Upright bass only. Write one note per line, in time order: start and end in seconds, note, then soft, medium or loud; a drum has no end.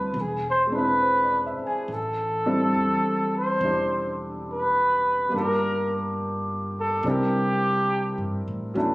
0.00 0.12 D2 medium
0.14 1.55 E1 medium
1.59 muted upright bass stroke soft
1.88 2.71 A1 medium
2.74 3.58 E2 medium
3.61 5.29 E1 medium
5.32 6.99 G1 medium
7.03 8.14 C2 medium
8.18 8.44 G2 medium
8.48 8.73 A2 medium
8.75 8.95 D2 medium